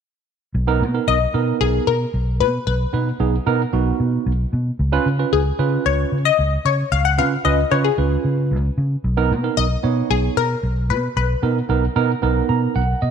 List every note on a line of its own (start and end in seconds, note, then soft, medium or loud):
0.55 0.83 B1 loud
0.67 0.82 B3 loud
0.67 0.82 D#4 medium
0.67 0.82 A#4 loud
0.81 0.98 B2 medium
0.94 1.16 B3 medium
0.94 1.16 D#4 medium
0.94 1.16 A#4 medium
1.07 1.25 B1 medium
1.07 1.62 D#5 loud
1.34 1.51 B2 medium
1.34 1.92 B3 medium
1.34 1.92 D#4 medium
1.34 1.92 A#4 medium
1.61 1.78 B1 loud
1.61 1.88 G#4 medium
1.87 2.04 B2 medium
1.87 2.42 A#4 medium
2.14 2.42 B1 loud
2.40 2.58 B2 loud
2.40 2.66 B4 medium
2.67 2.84 B1 loud
2.67 3.43 B4 medium
2.93 3.11 B2 loud
2.93 3.08 B3 medium
2.93 3.08 D#4 medium
2.93 3.08 B4 medium
3.20 3.37 B1 loud
3.20 3.34 B3 medium
3.20 3.35 D#4 medium
3.20 3.35 G#4 medium
3.46 3.64 B2 medium
3.46 3.61 B3 medium
3.46 3.61 D#4 medium
3.46 3.61 A#4 loud
3.73 3.90 B1 loud
3.73 4.31 B3 medium
3.73 4.31 D#4 medium
3.73 4.31 F#4 medium
4.00 4.17 B2 medium
4.26 4.44 B1 loud
4.53 4.70 B2 loud
4.79 4.97 C#2 loud
4.92 5.07 C#4 loud
4.92 5.07 F4 medium
4.92 5.07 B4 loud
5.06 5.23 C#3 loud
5.19 5.41 C#4 medium
5.19 5.41 F4 medium
5.19 5.41 B4 medium
5.32 5.50 C#2 loud
5.32 5.82 G#4 medium
5.59 5.76 C#3 medium
5.59 6.17 C#4 medium
5.59 6.17 F4 medium
5.59 6.17 B4 medium
5.86 6.03 C#2 medium
5.86 6.27 C#5 loud
6.12 6.29 C#3 medium
6.25 6.66 D#5 loud
6.39 6.56 C#2 loud
6.65 6.82 C#3 loud
6.65 6.93 C#5 loud
6.92 7.20 C#2 loud
6.92 7.05 F5 loud
7.05 7.19 F#5 loud
7.18 7.36 C#3 medium
7.18 7.33 C#4 medium
7.18 7.33 F4 medium
7.18 7.33 B4 medium
7.18 7.43 F5 loud
7.45 7.62 C#2 medium
7.45 7.59 C#4 medium
7.45 7.59 F4 medium
7.45 7.59 B4 medium
7.45 7.69 D#5 loud
7.71 7.89 C#3 medium
7.71 7.86 C#4 medium
7.71 7.86 F4 medium
7.71 7.86 B4 medium
7.71 7.85 C#5 medium
7.84 8.34 G#4 medium
7.98 8.15 C#2 loud
7.98 8.56 C#4 medium
7.98 8.56 F4 medium
7.98 8.56 B4 medium
8.24 8.53 C#3 medium
8.51 8.68 C#2 loud
8.78 8.95 C#3 loud
9.04 9.32 B1 loud
9.17 9.32 B3 loud
9.17 9.32 D#4 medium
9.17 9.32 A#4 loud
9.31 9.48 B2 medium
9.44 9.65 B3 medium
9.44 9.66 D#4 medium
9.44 9.66 A#4 medium
9.57 9.75 B1 medium
9.57 10.12 D#5 loud
9.83 10.01 B2 medium
9.83 10.42 B3 medium
9.83 10.42 D#4 medium
9.83 10.42 C#5 medium
10.10 10.28 B1 loud
10.10 10.38 G#4 medium
10.37 10.54 B2 medium
10.37 10.92 A#4 loud
10.63 10.91 B1 loud
10.90 11.07 B2 loud
10.90 11.16 B4 medium
11.16 11.34 B1 loud
11.16 11.92 B4 medium
11.43 11.60 B2 loud
11.43 11.57 B3 medium
11.43 11.58 D#4 medium
11.43 11.58 A#4 medium
11.69 11.87 B1 loud
11.69 11.84 B3 medium
11.69 11.84 D#4 medium
11.69 11.84 A#4 medium
11.96 12.13 B2 medium
11.96 12.10 B3 medium
11.96 12.11 D#4 medium
11.96 12.11 A#4 loud
12.22 12.40 B1 loud
12.22 12.81 B3 medium
12.22 12.81 D#4 medium
12.22 12.81 A#4 medium
12.49 12.66 B2 medium
12.49 12.74 A#5 medium
12.76 12.93 B1 loud
12.76 13.00 F#5 medium
13.02 13.11 B2 loud
13.02 13.11 D#5 medium